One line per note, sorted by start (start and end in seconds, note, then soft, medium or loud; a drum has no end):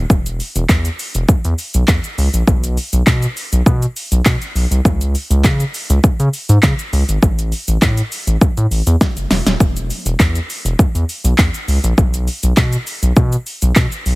0.10 0.40 E1 loud
0.10 kick loud
0.10 shaker medium
0.26 closed hi-hat medium
0.26 shaker medium
0.40 open hi-hat medium
0.40 shaker soft
0.56 0.65 E1 medium
0.56 closed hi-hat medium
0.56 shaker medium
0.69 0.89 E2 loud
0.69 kick loud
0.69 clap loud
0.69 shaker medium
0.85 closed hi-hat medium
0.85 shaker medium
0.99 open hi-hat medium
0.99 shaker medium
1.15 1.24 E1 medium
1.15 closed hi-hat medium
1.15 shaker medium
1.29 1.35 E2 medium
1.29 kick loud
1.29 shaker medium
1.45 1.54 E2 loud
1.45 closed hi-hat medium
1.45 shaker soft
1.58 open hi-hat medium
1.58 shaker soft
1.74 1.84 B1 medium
1.74 closed hi-hat medium
1.74 shaker medium
1.88 1.99 E2 loud
1.88 kick loud
1.88 clap loud
1.88 shaker medium
2.04 closed hi-hat medium
2.04 shaker medium
2.18 2.28 C#2 medium
2.18 open hi-hat medium
2.18 shaker medium
2.34 2.43 A#1 medium
2.34 closed hi-hat medium
2.34 shaker medium
2.47 2.78 B1 loud
2.47 kick loud
2.47 shaker medium
2.64 closed hi-hat medium
2.64 shaker medium
2.77 open hi-hat medium
2.77 shaker soft
2.93 3.02 B1 loud
2.93 closed hi-hat medium
2.93 shaker medium
3.07 3.26 B2 loud
3.07 kick loud
3.07 clap loud
3.07 shaker medium
3.22 closed hi-hat medium
3.22 shaker medium
3.37 open hi-hat medium
3.37 shaker medium
3.53 3.62 B1 medium
3.53 closed hi-hat medium
3.53 shaker medium
3.66 3.86 B2 loud
3.66 kick loud
3.66 shaker medium
3.82 closed hi-hat soft
3.82 shaker medium
3.96 open hi-hat medium
3.96 shaker medium
4.12 4.21 B1 loud
4.12 closed hi-hat medium
4.12 shaker medium
4.26 4.36 B2 loud
4.26 kick loud
4.26 clap loud
4.26 shaker medium
4.42 closed hi-hat medium
4.42 shaker medium
4.55 4.66 B1 loud
4.55 open hi-hat medium
4.55 shaker medium
4.71 4.80 C2 medium
4.71 closed hi-hat medium
4.71 shaker medium
4.85 5.15 C#2 loud
4.85 kick loud
4.85 shaker medium
5.01 closed hi-hat medium
5.01 shaker medium
5.15 open hi-hat medium
5.15 shaker soft
5.30 5.46 C#2 loud
5.30 closed hi-hat medium
5.30 shaker medium
5.44 5.64 C#3 loud
5.44 kick loud
5.44 clap loud
5.44 shaker medium
5.60 closed hi-hat medium
5.60 shaker medium
5.74 open hi-hat medium
5.74 shaker medium
5.90 5.99 C#2 medium
5.90 closed hi-hat medium
5.90 shaker medium
6.04 6.10 C#3 medium
6.04 kick loud
6.04 shaker medium
6.20 6.29 C#3 loud
6.20 closed hi-hat medium
6.20 shaker medium
6.33 open hi-hat medium
6.33 shaker soft
6.49 6.58 G#2 medium
6.49 closed hi-hat medium
6.49 shaker medium
6.63 6.74 C#3 loud
6.63 kick loud
6.63 clap loud
6.63 shaker medium
6.79 closed hi-hat medium
6.79 shaker medium
6.93 7.03 C#2 loud
6.93 open hi-hat medium
6.93 shaker medium
7.09 7.18 G#1 medium
7.09 closed hi-hat medium
7.09 shaker medium
7.23 7.53 A1 loud
7.23 kick loud
7.23 shaker medium
7.39 closed hi-hat medium
7.39 shaker medium
7.52 open hi-hat medium
7.52 shaker soft
7.68 7.77 A1 loud
7.68 closed hi-hat medium
7.68 shaker medium
7.82 8.02 A2 loud
7.82 kick loud
7.82 clap loud
7.82 shaker medium
7.97 closed hi-hat medium
7.97 shaker medium
8.12 open hi-hat medium
8.12 shaker medium
8.27 8.37 A1 medium
8.27 closed hi-hat medium
8.27 shaker medium
8.41 kick loud
8.41 shaker medium
8.57 8.67 A2 loud
8.57 closed hi-hat medium
8.57 shaker soft
8.71 8.81 A1 medium
8.71 open hi-hat medium
8.71 shaker soft
8.87 8.96 E2 medium
8.87 closed hi-hat medium
8.87 shaker medium
9.01 kick loud
9.01 snare medium
9.01 shaker medium
9.17 9.26 F#1 medium
9.17 closed hi-hat medium
9.17 shaker medium
9.30 9.41 E1 loud
9.30 snare medium
9.30 open hi-hat medium
9.30 shaker medium
9.46 9.55 D#1 medium
9.46 snare loud
9.46 closed hi-hat medium
9.46 shaker medium
9.60 9.90 E1 loud
9.60 kick loud
9.60 shaker medium
9.77 closed hi-hat medium
9.77 shaker medium
9.90 open hi-hat medium
9.90 shaker soft
10.06 10.15 E1 medium
10.06 closed hi-hat medium
10.06 shaker medium
10.20 10.39 E2 loud
10.20 kick loud
10.20 clap loud
10.20 shaker medium
10.35 closed hi-hat medium
10.35 shaker medium
10.50 open hi-hat medium
10.50 shaker medium
10.65 10.74 E1 medium
10.65 closed hi-hat medium
10.65 shaker medium
10.79 10.85 E2 soft
10.79 kick loud
10.79 shaker medium
10.95 11.04 E2 loud
10.95 closed hi-hat soft
10.95 shaker soft
11.09 open hi-hat medium
11.09 shaker soft
11.24 11.34 B1 medium
11.24 closed hi-hat medium
11.24 shaker medium
11.38 11.49 E2 loud
11.38 kick loud
11.38 clap loud
11.38 shaker medium
11.54 closed hi-hat medium
11.54 shaker medium
11.68 11.79 C#2 medium
11.68 open hi-hat medium
11.68 shaker medium
11.84 11.93 A#1 medium
11.84 closed hi-hat medium
11.84 shaker medium
11.98 12.28 B1 loud
11.98 kick loud
11.98 shaker medium
12.14 closed hi-hat medium
12.14 shaker medium
12.27 open hi-hat medium
12.27 shaker soft
12.43 12.53 B1 loud
12.43 closed hi-hat medium
12.43 shaker medium
12.57 12.77 B2 loud
12.57 kick loud
12.57 clap loud
12.57 shaker medium
12.73 closed hi-hat medium
12.73 shaker medium
12.87 open hi-hat medium
12.87 shaker medium
13.03 13.12 B1 medium
13.03 closed hi-hat medium
13.03 shaker medium
13.16 13.36 B2 loud
13.16 kick loud
13.16 shaker medium
13.32 closed hi-hat medium
13.32 shaker soft
13.46 open hi-hat medium
13.46 shaker soft
13.62 13.72 B1 loud
13.62 closed hi-hat medium
13.62 shaker medium
13.76 13.87 B2 loud
13.76 kick loud
13.76 clap loud
13.76 shaker medium
13.92 closed hi-hat medium
13.92 shaker medium
14.06 14.15 B1 loud
14.06 open hi-hat medium
14.06 shaker medium